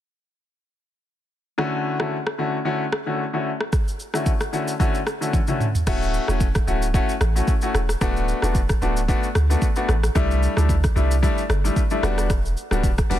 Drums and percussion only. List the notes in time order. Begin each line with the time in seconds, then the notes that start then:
1.58 cross-stick
2.00 cross-stick
2.27 cross-stick
2.92 cross-stick
3.61 cross-stick
3.73 kick, cross-stick, shaker
3.88 shaker
4.00 shaker
4.14 cross-stick, shaker
4.26 kick, shaker
4.41 cross-stick, shaker
4.53 shaker
4.68 shaker
4.80 kick, shaker
4.95 shaker
5.07 cross-stick, shaker
5.22 shaker
5.33 kick, high tom, shaker
5.47 mid tom, shaker
5.60 mid tom, shaker
5.75 floor tom, shaker
5.87 kick, cross-stick, crash, shaker
6.02 shaker
6.14 shaker
6.28 cross-stick, shaker
6.40 kick, shaker
6.55 kick, cross-stick, shaker
6.68 shaker
6.82 shaker
6.94 kick, shaker
7.09 shaker
7.21 cross-stick, shaker
7.36 shaker
7.48 kick, shaker
7.61 shaker
7.75 cross-stick, shaker
7.89 cross-stick, shaker
8.01 kick, cross-stick, shaker
8.17 shaker
8.28 shaker
8.42 cross-stick, shaker
8.55 kick, shaker
8.69 kick, cross-stick, shaker
8.82 shaker
8.97 shaker
9.09 kick, shaker
9.23 shaker
9.35 cross-stick, shaker
9.51 shaker
9.62 kick, shaker
9.76 shaker
9.89 cross-stick, shaker
10.03 cross-stick, shaker
10.15 kick, cross-stick, shaker
10.31 shaker
10.43 shaker
10.57 cross-stick, shaker
10.69 kick, shaker
10.84 kick, cross-stick, shaker
10.97 shaker
11.11 shaker
11.23 kick, shaker
11.38 shaker
11.50 cross-stick, shaker
11.65 shaker
11.76 kick, shaker
11.90 shaker
12.03 cross-stick, shaker
12.18 cross-stick, shaker
12.30 kick, cross-stick, shaker
12.45 shaker
12.57 shaker
12.71 cross-stick, shaker
12.83 kick, shaker
12.98 kick, cross-stick, shaker
13.11 open hi-hat, shaker